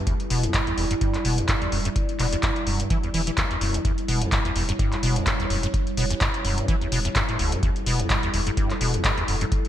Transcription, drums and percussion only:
0.07 kick, closed hi-hat
0.20 closed hi-hat
0.30 open hi-hat
0.43 closed hi-hat
0.54 kick, clap, closed hi-hat
0.67 closed hi-hat
0.78 open hi-hat
0.91 closed hi-hat
1.01 kick, closed hi-hat
1.14 clap, closed hi-hat
1.25 open hi-hat
1.38 closed hi-hat
1.49 kick, clap, closed hi-hat
1.62 closed hi-hat
1.72 open hi-hat
1.85 closed hi-hat
1.96 kick, closed hi-hat
2.09 closed hi-hat
2.19 clap, open hi-hat
2.33 closed hi-hat
2.43 kick, clap, closed hi-hat
2.56 closed hi-hat
2.67 open hi-hat
2.80 closed hi-hat
2.90 kick, closed hi-hat
3.03 closed hi-hat
3.14 open hi-hat
3.27 closed hi-hat
3.38 kick, clap, closed hi-hat
3.51 closed hi-hat
3.61 open hi-hat
3.74 closed hi-hat
3.85 kick, closed hi-hat
3.98 closed hi-hat
4.08 open hi-hat
4.22 closed hi-hat
4.32 kick, clap, closed hi-hat
4.45 closed hi-hat
4.56 open hi-hat
4.69 closed hi-hat
4.79 kick, closed hi-hat
4.92 clap, closed hi-hat
5.03 open hi-hat
5.16 closed hi-hat
5.27 kick, clap, closed hi-hat
5.40 closed hi-hat
5.50 open hi-hat
5.63 closed hi-hat
5.74 kick, closed hi-hat
5.87 closed hi-hat
5.97 open hi-hat
6.11 closed hi-hat
6.21 kick, clap, closed hi-hat
6.34 closed hi-hat
6.45 open hi-hat
6.58 closed hi-hat
6.68 kick, closed hi-hat
6.81 closed hi-hat
6.92 open hi-hat
7.05 closed hi-hat
7.16 kick, clap, closed hi-hat
7.29 closed hi-hat
7.39 open hi-hat
7.52 closed hi-hat
7.63 kick, closed hi-hat
7.76 closed hi-hat
7.86 open hi-hat
8.00 closed hi-hat
8.10 kick, clap, closed hi-hat
8.23 closed hi-hat
8.34 open hi-hat
8.47 closed hi-hat
8.57 kick, closed hi-hat
8.70 clap, closed hi-hat
8.81 open hi-hat
8.94 closed hi-hat
9.05 kick, clap, closed hi-hat
9.18 closed hi-hat
9.28 open hi-hat
9.41 closed hi-hat
9.52 kick, closed hi-hat
9.65 closed hi-hat

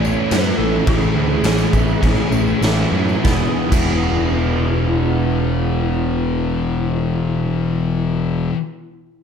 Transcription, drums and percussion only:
0.05 tambourine
0.31 snare, tambourine, crash
0.87 kick, crash
1.02 tambourine
1.44 snare, tambourine, crash
1.58 tambourine
1.73 kick, tambourine
1.88 tambourine
2.03 kick, tambourine, crash
2.17 tambourine
2.32 tambourine
2.47 tambourine
2.62 snare, tambourine, crash
3.09 tambourine
3.24 kick, snare, tambourine
3.72 kick, crash, tambourine

